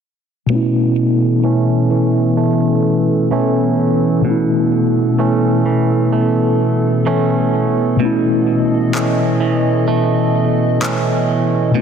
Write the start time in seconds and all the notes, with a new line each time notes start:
0.46 B2 A3
0.51 E3 B3 C#4 A4
0.55 E4
1.44 E3 A3 C#4
1.91 E3
2.37 A3
3.31 E3 A3 C#4
4.22 B2 A3
4.27 C#4 E4
5.19 E3 A3 C#4
5.66 E3
6.12 A3
7.06 E3 A3 C#4
7.97 B2 A3 D#5
8.02 C#4 E4
8.94 E3 A3 C#4, clap
9.41 E3
9.88 A3
10.81 E3 A3 C#4, clap
11.71 B2 A3
11.77 C#4